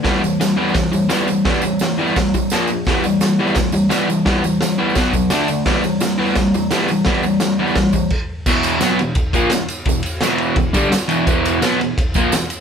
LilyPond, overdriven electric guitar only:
\new Staff \with { instrumentName = "Overdriven electric guitar" } { \clef bass \time 4/4 \key e \minor \tempo 4 = 171 <e g b>8 <e g>8 <e g>8 <e g b>8 <e g>8 <e g>8 <e g b>8 <e g>8 | <e g b>8 <e g>8 <e g>8 <e g b>8 <e g>8 <e g>8 <ais, eis ais>8 <ais, eis>8 | <e g b>8 <e g>8 <e g>8 <e g b>8 <e g>8 <e g>8 <e g b>8 <e g>8 | <e g b>8 <e g>8 <e g>8 <e g b>8 <b, fis b>8 <b, fis>8 <d a d'>8 <d a>8 |
<e g b>8 <e g>8 <e g>8 <e g b>8 <e g>8 <e g>8 <e g b>8 <e g>8 | <e g b>8 <e g>8 <e g>8 <e g b>8 <e g>8 <e g>8 r4 | <e, b, e>4 <b, fis b>8 <e, b,>8 r8 <ais, f ais>8 <e, b,>8 r8 | <e, b,>8 r8 <e, b, e>4 <e, b,>8 <g, d g>8 r8 <e, b, e>8 |
<e, b, e>4 <b, fis b>8 <e, b,>8 r8 <ais, f ais>8 <e, b,>8 r8 | }